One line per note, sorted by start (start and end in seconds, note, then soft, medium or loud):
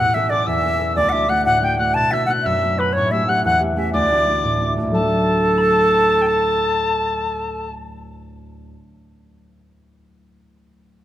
0.00 0.52 A2 medium
0.00 0.15 B3 soft
0.00 0.21 D4 soft
0.00 2.43 E4 soft
0.00 1.20 G4 medium
0.00 0.16 A4 medium
0.00 0.16 F#5 loud
0.00 0.15 F#6 medium
0.14 0.31 B3 soft
0.14 0.31 C#4 soft
0.14 0.32 A4 medium
0.14 0.31 E5 medium
0.14 0.30 E6 medium
0.30 0.62 B3 soft
0.30 0.62 C#4 soft
0.30 0.63 A4 soft
0.30 0.46 D5 medium
0.30 0.48 D6 medium
0.47 1.02 E2 medium
0.47 0.93 E5 loud
0.47 0.90 E6 medium
0.62 0.79 B3 soft
0.62 0.80 C#4 soft
0.62 0.81 A4 soft
0.80 2.11 B3 soft
0.80 1.03 C#4 soft
0.80 3.01 A4 medium
0.90 0.98 E6 soft
0.96 2.01 D2 medium
0.96 1.11 D5 loud
0.96 1.31 D6 medium
1.09 1.29 A3 soft
1.09 1.29 D4 soft
1.09 1.31 E5 medium
1.09 1.13 F#5 medium
1.14 1.30 F#4 medium
1.29 1.61 A3 soft
1.29 1.62 D4 soft
1.29 1.62 F#4 soft
1.29 1.44 F#5 medium
1.29 1.46 F#6 medium
1.45 2.01 A2 medium
1.45 1.61 F#5 loud
1.45 1.65 F#6 medium
1.61 1.78 A3 soft
1.61 1.78 D4 soft
1.61 1.79 F#4 soft
1.61 1.80 G5 medium
1.61 1.78 G6 medium
1.79 3.11 A3 soft
1.79 2.12 D4 soft
1.79 2.12 F#4 medium
1.79 1.96 F#5 medium
1.79 1.95 F#6 medium
1.94 2.51 B2 medium
1.94 2.13 A5 loud
1.94 2.15 A6 medium
2.11 2.28 B3 soft
2.11 2.28 D4 soft
2.11 2.29 F#4 medium
2.11 2.25 E5 medium
2.11 2.32 E6 medium
2.26 2.61 B3 soft
2.26 2.62 D4 soft
2.26 2.62 F#4 soft
2.26 2.32 F#5 medium
2.30 2.48 F#6 medium
2.43 3.01 F#2 medium
2.43 2.80 E5 medium
2.43 2.82 E6 medium
2.62 2.79 B3 soft
2.62 2.80 D4 soft
2.62 2.80 F#4 medium
2.79 5.90 B3 soft
2.79 3.18 D4 soft
2.79 3.19 F#4 medium
2.79 2.94 B4 medium
2.79 2.96 B5 medium
2.93 3.50 A2 medium
2.93 3.13 C#5 medium
2.93 3.12 C#6 medium
3.11 3.27 A3 soft
3.11 3.27 C#4 soft
3.11 3.28 G4 medium
3.11 3.27 E5 medium
3.11 3.31 E6 medium
3.27 3.59 A3 soft
3.27 3.60 C#4 soft
3.27 3.60 G4 medium
3.27 3.43 F#5 medium
3.27 3.45 F#6 medium
3.45 4.00 E2 medium
3.45 3.61 F#5 loud
3.45 3.61 F#6 medium
3.59 3.76 A3 soft
3.59 3.77 C#4 soft
3.59 3.77 G4 medium
3.76 4.10 A3 soft
3.76 4.00 C#4 soft
3.76 4.18 G4 medium
3.76 3.93 E5 medium
3.93 4.81 D2 medium
3.93 4.66 D5 medium
3.93 4.73 D6 medium
4.10 4.27 A3 soft
4.10 4.28 D4 soft
4.10 4.29 F#4 medium
4.28 4.60 A3 soft
4.28 4.61 D4 soft
4.28 4.61 F#4 soft
4.44 4.86 A2 medium
4.60 4.77 A3 soft
4.60 4.77 D4 soft
4.60 4.77 F#4 soft
4.77 4.95 A3 soft
4.77 5.00 D4 soft
4.77 5.04 F#4 soft
4.82 8.72 D2 soft
4.87 8.77 A2 soft
4.91 8.60 F#3 soft
4.91 7.67 A4 medium
4.91 5.59 A5 medium
4.96 8.39 A3 soft
5.00 8.42 D4 soft
5.00 8.44 F#4 medium
5.58 6.23 A5 medium
5.58 5.62 B5 medium
6.22 6.28 G5 medium
6.27 7.73 A5 loud